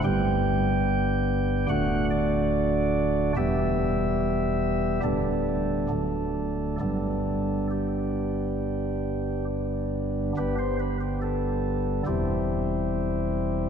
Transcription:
<<
  \new Staff \with { instrumentName = "Pipe organ" } { \time 4/4 \key g \major \tempo 4 = 71 g''2 fis''8 d''4. | e''2 a'2 | a'4 g'2 r4 | <d' g' b'>16 c''16 b'16 g'16 a'4 <c' e' g'>2 | }
  \new Staff \with { instrumentName = "Pipe organ" } { \clef bass \time 4/4 \key g \major <g,, g, g b g'>2 <d,, d, a d' fis'>2 | <e,, e, g b g'>2 <d,, d, g b d'>4 <d,, d, fis a d'>4 | <g,, g, g b d'>1 | <g,, g, g b>2 <e,, e, g>2 | }
>>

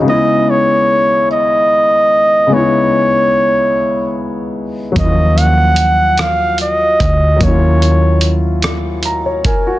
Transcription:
<<
  \new Staff \with { instrumentName = "Flugelhorn" } { \time 6/8 \key ees \phrygian \tempo 4. = 49 ees''8 des''4 ees''4. | des''2 r4 | ees''8 ges''4 f''8 ees''4 | des''4 r2 | }
  \new Staff \with { instrumentName = "Grand piano" } { \time 6/8 \key ees \phrygian r2. | r2. | r2. | r2 bes''16 des''16 <bes' aes''>16 ges'16 | }
  \new Staff \with { instrumentName = "Grand piano" } { \time 6/8 \key ees \phrygian <des aes ces' ees' fes'>2. | <des aes ces' ees' fes'>2. | <f ges bes fes'>2. | <ges bes des' fes' f'>2. | }
  \new Staff \with { instrumentName = "Fingered electric bass" } { \clef bass \time 6/8 \key ees \phrygian r2. | r2. | ees,2~ ees,8 d,8 | ees,2. | }
  \new DrumStaff \with { instrumentName = "Drums" } \drummode { \time 6/8 r4. r4. | r4. r4. | <hh bd>8 hh8 hh8 <hh ss>8 hh8 <hh bd>8 | <hh bd>8 hh8 hh8 <hh ss>8 hh8 <hh bd>8 | }
>>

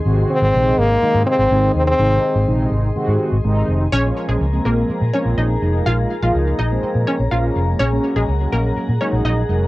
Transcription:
<<
  \new Staff \with { instrumentName = "Ambient pad" } { \time 4/4 \key bes \minor \tempo 4 = 124 << { c'''1~ | c'''1 | bes''1~ | bes''1~ |
bes''1 | } \\ { <aes' ees''>1~ | <aes' ees''>1 | <aes' bes'>1~ | <aes' bes'>1 |
<aes' ges''>1 | } >> }
  \new Staff \with { instrumentName = "Synth pluck" } { \time 4/4 \key bes \minor r1 | r1 | <des' des''>8 r16 <aes aes'>16 r8 <bes bes'>8 r8 <des' des''>8 <ees' ees''>8. r16 | <f' f''>8 r16 <f' f''>16 r8 <ees' ees''>8 r8 <des' des''>8 <f' f''>8. r16 |
<des' des''>8 r16 <aes aes'>16 r8 <bes bes'>8 r8 <des' des''>8 <ees' ees''>8. r16 | }
  \new Staff \with { instrumentName = "French horn" } { \time 4/4 \key bes \minor r8 c'4 bes4 c'4 c'16 c'16~ | c'4~ c'16 r2 r8. | r1 | r1 |
r1 | }
  \new Staff \with { instrumentName = "Analog polysynth" } { \clef bass \time 4/4 \key bes \minor <c ees aes c' ges'>8. r16 <c ees aes c' ees'>8. r16 <c ees aes c' ees'>8. r16 <c ees aes c' ees'>8. r16 | <c ees aes c' ees'>8. r16 <c ees aes c' ees'>8. r16 <c ees aes c' ges'>8. r16 <c ees aes c' ees'>8. r16 | r16 <f aes bes des'>8. r16 <f aes bes c'>4 r16 <f aes bes c'>8. r16 <f aes bes ees'>8~ | <f aes bes ees'>8 r16 <f aes bes ees'>8. r16 <f aes bes c'>4 r16 <f aes bes des'>4 |
r16 <ges aes bes des'>8. r16 <ges aes bes des'>4 r16 <ges aes bes ees'>8. r16 <ges aes bes des'>8 | }
  \new Staff \with { instrumentName = "Fingered electric bass" } { \clef bass \time 4/4 \key bes \minor aes,,8 r16 aes,,16 bes,,8 aes,,8 r16 aes,16 r16 aes,,16 aes,,8 ees,8 | aes,,8 r16 aes,,16 bes,,8 aes,,8 r16 aes,16 r16 aes,,16 aes,,8 f,,8 | bes,,8 r16 bes,,16 des,8 bes,,8 r16 bes,16 r16 bes,,16 bes,,8 f,,8 | bes,,8 r16 bes,,16 des,8 bes,,8 r16 bes,16 r16 bes,,16 bes,,8 f,,8 |
bes,,8 r16 bes,,16 des,8 bes,,8 r16 bes,16 r16 bes,,16 bes,,8 f,,8 | }
>>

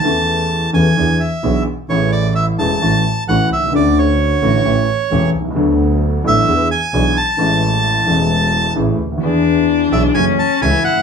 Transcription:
<<
  \new Staff \with { instrumentName = "Bandoneon" } { \time 4/4 \key a \major \tempo 4 = 131 a''4. gis''4 e''4 r8 | cis''8 d''8 e''8 a''4. fis''8 e''8 | d''8 cis''2. r8 | r4. e''4 gis''4 a''8~ |
a''2. r4 | r4. e''8 gis''8 a''8 gis''8 fis''8 | }
  \new Staff \with { instrumentName = "Cello" } { \time 4/4 \key a \major r1 | r1 | r1 | r1 |
r1 | d'2 cis'4 e'4 | }
  \new Staff \with { instrumentName = "Grand piano" } { \clef bass \time 4/4 \key a \major <e, e a cis' a'>4. <e, e a cis' a'>8 <e, e b d' gis'>8 r8 <b,, b, e b d' gis'>8 r8 | <a,, a, e a cis' gis'>4. <e,, e, e a cis' gis'>8 <a,, a, e a cis' fis'>8 r8 <a,, a, e a cis' fis'>8 r32 b,,32 c,32 cis,32 | <d, d a cis' fis'>4. <a,, a, d a cis' fis'>8 <a,, a, e a cis' g'>8 r8 <e,, e, e a cis' g'>8 r32 b,,32 c,32 cis,32 | <d, d fis b d' a'>4. <a,, a, fis b d' a'>8 <e, e b d' gis'>8 r8 <b,, b, e b d' gis'>8 r8 |
<a,, a, e gis a cis'>4. <e,, e, e gis a cis'>4. <a,, a, e a cis' gis'>8 r32 cis,32 d,32 dis,32 | <e, e b d' gis'>4. <b,, b, e b d' gis'>8 <fis, e fis a cis' fis'>8 r8 <cis, cis e a cis' fis'>8 r32 fis,,32 g,,32 r32 | }
  \new Staff \with { instrumentName = "Double bass" } { \clef bass \time 4/4 \key a \major e,4. e,8 e,8 r8 b,,8 r8 | a,,4. e,,8 a,,8 r8 a,,8 c,8 | d,4. a,,8 a,,8 r8 e,,8 c,8 | d,4. a,,8 e,8 r8 b,,8 r8 |
a,,4. e,,4. a,,8 d,8 | e,4. b,,8 fis,,8 r8 cis,8 g,,8 | }
>>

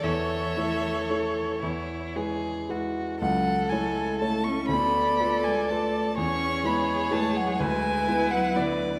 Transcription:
<<
  \new Staff \with { instrumentName = "Violin" } { \time 6/8 \key a \major \tempo 4. = 40 e''4. r4. | fis''8 gis''8 a''16 cis'''16 b''8. gis''16 a''8 | cis'''8 b''8 a''16 fis''16 gis''8. fis''16 d''8 | }
  \new Staff \with { instrumentName = "Viola" } { \time 6/8 \key a \major cis''2~ cis''16 r8. | r4. d''4. | cis''4. b'4. | }
  \new Staff \with { instrumentName = "Violin" } { \time 6/8 \key a \major a'4. e'8 gis'8 fis'8 | a'4. a'4. | gis'4. e'4. | }
  \new Staff \with { instrumentName = "Grand piano" } { \time 6/8 \key a \major e,8 <a e' cis''>8 <a e' cis''>8 e,8 <gis e' b'>8 <gis e' b'>8 | cis,8 <a e' cis''>8 <a e' cis''>8 d,8 <a f' b'>8 <a f' b'>8 | e,8 <gis e' b'>8 <gis e' b'>8 d,8 <b e' b'>8 <b e' b'>8 | }
  \new Staff \with { instrumentName = "Cello" } { \clef bass \time 6/8 \key a \major e4. r4. | fis8 gis8 a16 cis'16 b8. gis16 a8 | cis'8 b8 a16 fis16 gis8. fis16 d8 | }
>>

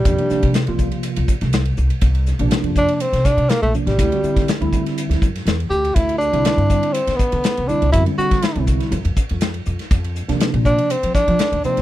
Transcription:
<<
  \new Staff \with { instrumentName = "Tenor saxophone" } { \time 4/4 \key d \phrygian \tempo 4 = 122 g4~ g16 r2 r8. | r4. d'16. d'32 c'8 d'8 bes16 a8 g16~ | g4~ g16 r2 r16 g'8 | e'8 d'4. c'8 b4 d'8 |
e'8 fis'4 r2 r8 | r4. d'8 c'8 d'4 c'8 | }
  \new Staff \with { instrumentName = "Tine electric piano" } { \clef bass \time 4/4 \key d \phrygian <c f bes d'>16 <c f bes d'>16 <c f bes d'>8 r16 <c f bes f'>4~ <c f bes f'>16 r4. | r8. <c f bes d'>4~ <c f bes d'>16 r4. <c f bes d'>16 r16 | <d g c' e'>16 <d g c' fis'>16 <d g c' e'>8 r16 <d g c' e'>4~ <d g c' e'>16 r4. | r8. <d g c' e'>4~ <d g c' e'>16 r4. <d g c' e'>16 r16 |
<d g c' fis'>16 <d g c' e'>16 <d g c' fis'>8 r16 <d g c' e'>8. r2 | r8. <c f bes d'>4~ <c f bes d'>16 r4. <c f bes ees'>16 r16 | }
  \new Staff \with { instrumentName = "Upright bass" } { \clef bass \time 4/4 \key d \phrygian f,16 r8 c8 c,8 r8 c,16 r16 c,8. c,16 r16 | c,8. bes,,16 r16 f,8 r8 c8 c16 r16 bes,,16 r16 a,,16 | d,16 r8 d8 d,8 r8 d,16 fis,8 e,8 d,8 | d,8. c,16 r16 g,8 r8 d8 d16 r16 c,16 r16 c,16 |
fis,16 r8 d8 c,8 r16 f,16 f,16 r16 f,8. f,16 r16 | f,8. ees,16 r16 bes,8 r8 f8 f16 r16 ees,16 r16 ees,16 | }
  \new DrumStaff \with { instrumentName = "Drums" } \drummode { \time 4/4 <hhp bd cymr>16 cymr16 <hhp sn>16 <bd cymr>16 <hhp cymr sn>16 cymr16 <hhp bd>16 cymr16 <hhp cymr>16 cymr16 <hhp bd>16 <cymr sn>16 <hhp cymr sn>16 cymr16 hhp16 cymr16 | <hhp bd cymr>16 cymr16 <hhp sn>16 cymr16 <hhp cymr sn>16 cymr16 <hhp bd>16 cymr16 <hhp cymr>16 <cymr sn>16 <hhp bd sn>16 cymr16 <hhp cymr sn>16 cymr16 hhp16 <cymr sn>16 | <hhp bd cymr>16 cymr16 hhp16 <bd cymr sn>16 <hhp cymr sn>16 cymr16 <hhp bd>16 <cymr sn>16 <hhp cymr>16 <cymr sn>16 <hhp bd>16 <cymr sn>16 <hhp cymr sn>16 cymr16 hhp16 cymr16 | <hhp bd cymr>16 cymr16 hhp16 cymr16 <hhp cymr sn>16 cymr16 <hhp bd>16 cymr16 <hhp cymr>16 <cymr sn>16 <hhp bd>16 cymr16 <hhp cymr sn>16 cymr16 hhp16 cymr16 |
<hhp bd cymr>16 cymr16 <hhp sn>16 <bd cymr sn>16 <hhp cymr sn>16 cymr16 <hhp bd>16 <cymr sn>16 <hhp cymr>16 cymr16 <hhp bd>16 cymr16 <hhp cymr sn>16 cymr16 hhp16 <cymr sn>16 | <hhp bd cymr>16 cymr16 hhp16 <cymr sn>16 <hhp cymr sn>16 cymr16 <hhp bd>16 cymr16 <hhp cymr>16 cymr16 <hhp bd sn>16 cymr16 <hhp cymr sn>16 cymr16 hhp16 <cymr sn>16 | }
>>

